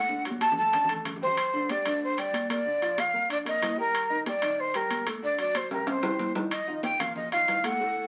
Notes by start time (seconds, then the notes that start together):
Already playing: D2 F#5
0.09 D3 D4, high conga
0.25 F#3 F#4, high timbale
0.30 high conga
0.41 A5, high conga, high timbale
0.52 low conga
0.57 A1 A3 A4 A5
0.73 D4 D5, low conga, high timbale
0.84 low conga
0.89 A3 A4, high timbale
0.95 low conga
1.05 G1, low conga, high timbale
1.16 low conga
1.22 G3 G4 C5
1.27 low conga
1.37 high conga, high timbale
1.53 D3 D4, high conga
1.69 G3 G4 D5, high conga, high timbale
1.86 D2 D3 D4, high timbale
2.02 C5, high conga
2.18 G3 G4 D5, high conga, high timbale
2.33 A#1, high conga, high timbale
2.50 A#3 A#4 D5, high conga, high timbale
2.65 D3 D4, high conga
2.82 F3 F4, high conga, high timbale
2.98 F5, high conga, high timbale
3.13 F2 A#3 A#4, high conga
3.29 D4 D5, high conga, high timbale
3.45 A#3 A#4 D#5, high conga, high timbale
3.62 D#2, high conga, high timbale, low timbale
3.77 G3 G4 A#4, high conga
3.94 high conga, high timbale
4.10 D#3 D#4, high conga
4.26 G3 G4 D5, high conga, high timbale
4.42 A#1 D#3 D#4, high timbale
4.58 C5, high conga
4.74 G3 G4 A#4, high conga, high timbale
4.90 D2, high conga, high timbale
5.06 A3 A4, high conga, high timbale
5.22 D3 D4 D5, high conga
5.38 F#3 F#4 D5, high conga, high timbale
5.55 C5, high conga, high timbale
5.71 C2 G3 G4 A#4, high conga, high timbale
5.87 C4 C5, high conga, high timbale
6.03 G3 G4, low timbale
6.19 F2, high conga, low timbale
6.35 D#3 D#4, low timbale
6.51 D#5, high conga, high timbale
6.67 D#3 D#4 F4, high conga
6.83 G5, high conga, high timbale
6.99 F2 A#2 A#3 A#4 F5, low conga, high timbale
7.16 D#5, high conga, low conga
7.32 D#3 D#4 F4 F5, high conga, high timbale
7.48 D2, high conga, high timbale, low timbale
7.64 A2 A3 A4 F#5, high conga, high timbale
7.80 A2 A3 A4, high conga
7.96 high conga